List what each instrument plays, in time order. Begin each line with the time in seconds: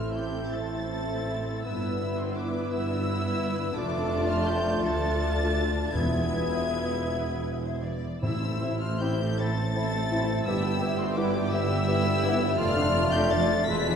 Already playing: tuba A1, double bass section A1, cello section A2, timpani A2, bassoon A3, viola section C4 E4, french horn section C4 E4, clarinet E4, cor anglais F4, violin section A4 E5 F6, flute section C5
0.14 cor anglais G4, violin section G6
0.53 tuba A1, double bass section A1, cello section A2, cor anglais A4, violin section A6
0.92 viola section C4 E4, violin section A4 E5
1.64 double bass section G1, tuba G1, cello section G2, viola section B3 E4, french horn section B3, bassoon B3, cor anglais E4, violin section B4 E5 E6, flute section B4
1.99 viola section B3 E4, violin section B4 E5
2.19 cor anglais C4, violin section C6
2.37 cor anglais D4, violin section D6
2.72 double bass section G1, tuba G1, cello section G2, cor anglais E4, violin section E6
3.06 viola section B3 E4, violin section B4 E5
3.74 double bass section F1, tuba F1, cello section F2, french horn section A3 F4, bassoon A3, viola section D4 F4, cor anglais D4, clarinet F4, violin section A4 A5 D6, flute section D5
4.29 cor anglais F4, violin section F6
4.45 cor anglais G4, violin section G6
4.82 double bass section D2, tuba D2, cello section D2, viola section D4 F4, violin section A4 A5 A6, cor anglais A4
5.93 tuba E1, double bass section E1, cello section E2, timpani E2, french horn section B3, viola section B3 E4, bassoon B3, clarinet E4, cor anglais G#4, violin section B4 E5 G#6, flute section E5
7.06 french horn section E4, violin section B4
7.65 violin section C5
7.83 violin section D5
8.22 double bass section A1, tuba A1, cello section A2, timpani A2, viola section A3 E4, bassoon C4, clarinet E4, cor anglais E4, violin section C5 E5 E6, flute section E5
8.41 viola section C4, violin section A4 C5
8.60 viola section A3 E4, bassoon C4, clarinet E4, violin section C5 E5, flute section E5
8.80 viola section C4, cor anglais F4, violin section A4 C5 F6
9.00 viola section A3 E4, french horn section C4 E4, bassoon C4, clarinet E4, cor anglais G4, violin section C5 E5 G6, flute section E5
9.19 viola section C4, violin section A4 C5
9.38 viola section A3 E4, bassoon C4, clarinet E4, cor anglais A4, violin section C5 E5 A6, flute section E5
9.57 viola section C4, violin section A4 C5
9.76 viola section A3 E4, bassoon C4, clarinet E4, violin section C5 E5, flute section E5
9.94 viola section C4, violin section A4 C5
10.11 viola section A3 E4, bassoon C4, french horn section C4 E4, clarinet E4, violin section C5 E5, flute section E5
10.29 viola section C4, violin section A4 C5
10.46 double bass section G1, tuba G1, cello section G2, viola section G3 E4, bassoon B3, cor anglais E4, violin section G4 E5 E6, clarinet G4, flute section E5
10.63 viola section B3 G4, violin section B4 G5
10.80 viola section G3 E4, bassoon B3, clarinet G4, violin section G4 E5, flute section E5
10.98 viola section B3 G4, cor anglais C4, violin section B4 G5 C6
11.16 viola section G3 E4, bassoon B3, french horn section B3 E4, cor anglais D4, violin section G4 E5 D6, clarinet G4, flute section E5
11.34 viola section B3 G4, violin section B4 G5
11.51 viola section G3 E4, bassoon B3, cor anglais E4, clarinet G4, violin section G4 E5 E6, flute section E5
11.68 viola section B3 G4, violin section B4 G5
11.85 viola section G3 E4, bassoon B3, violin section G4 E5, clarinet G4, flute section E5
12.02 viola section B3 G4, violin section B4 G5
12.21 viola section G3 E4, bassoon B3, violin section G4 E5, clarinet G4, flute section E5
12.26 french horn section B3 E4
12.40 viola section B3 G4, violin section B4 G5
12.57 tuba F1, double bass section F1, cello section F2, bassoon A3, viola section A3 F4, violin section F4 D5 F6, cor anglais F4, clarinet F4, flute section D5
12.75 viola section D4, violin section A4 F5
12.93 viola section A3 F4, violin section F4 D5
13.11 viola section D4, cor anglais G4, violin section A4 F5 G6
13.29 viola section A3 F4, french horn section A3 D4, violin section F4 D5 A6, cor anglais A4
13.49 viola section D4, violin section A4 F5
13.67 double bass section E1, tuba E1, cello section E2, bassoon G#3, viola section E4 F4, clarinet F4, violin section B4 E5 B6, cor anglais B4, flute section D5
13.86 viola section D4 E4, violin section G#4 F5